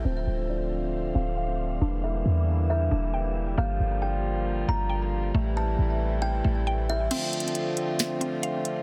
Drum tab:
CC |------------------------|------------------------|------------------------|------------------------|
HH |------------------------|------------------------|------------------------|------------------------|
SD |------------------------|------------------------|------------------------|------------------------|

CC |x-----------------------|
HH |x--xxxx--x--x--x--x--x--|
SD |------------o-----------|